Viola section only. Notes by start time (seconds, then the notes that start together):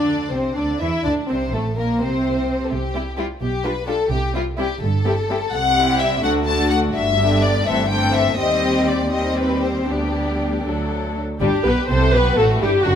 Already playing: D4
0.33 C4
0.56 D4
0.81 E4
1.05 D4
1.30 C4
1.53 A3
1.77 A#3
2.01 C4
2.95 G3 C4
3.18 G3 C4
3.64 G3 D4
3.88 G3 D4
4.35 G3 C4
4.59 G3 C4
5.05 G3 C4
5.30 G3 C4
5.77 G3 C4
6.24 D3 A3
6.47 D3 A3
7.19 D3 B3
7.66 E3 A3
7.90 E3 A3
8.38 G3 C4
9.12 G3 C4
9.88 G3 B3
10.65 F#3 A3
11.41 G4
11.65 B4
11.90 C5
12.14 B4
12.37 A4
12.62 G4
12.85 F#4